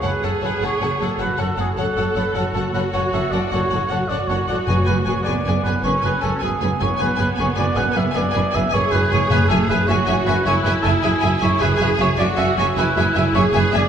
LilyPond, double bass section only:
\new Staff \with { instrumentName = "Double bass section" } { \clef bass \time 12/8 \key fis \minor \tempo 4. = 104 fis,,8 fis,,8 fis,,8 fis,,8 fis,,8 fis,,8 fis,,8 fis,,8 fis,,8 fis,,8 fis,,8 fis,,8 | fis,,8 fis,,8 fis,,8 fis,,8 fis,,8 fis,,8 fis,,8 fis,,8 fis,,8 fis,,8 fis,,8 fis,,8 | fis,,8 fis,,8 fis,,8 fis,,8 fis,,8 fis,,8 fis,,8 fis,,8 fis,,8 fis,,8 fis,,8 fis,,8 | fis,,8 fis,,8 fis,,8 fis,,8 fis,,8 fis,,8 fis,,8 fis,,8 fis,,8 fis,,8 fis,,8 fis,,8 |
fis,,8 fis,,8 fis,,8 fis,,8 fis,,8 fis,,8 fis,,8 fis,,8 fis,,8 fis,,8 fis,,8 fis,,8 | fis,,8 fis,,8 fis,,8 fis,,8 fis,,8 fis,,8 fis,,8 fis,,8 fis,,8 fis,,8 fis,,8 fis,,8 | }